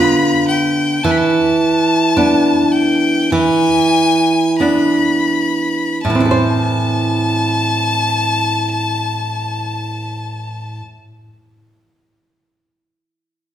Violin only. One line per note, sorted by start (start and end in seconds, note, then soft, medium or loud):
0.00 0.48 B5 loud
0.48 1.05 G5 loud
1.03 1.12 A5 medium
1.11 1.19 B5 medium
1.17 2.74 A5 medium
2.72 3.33 G5 loud
3.31 4.58 G#5 loud
4.59 6.01 B5 medium
6.04 10.79 A5 medium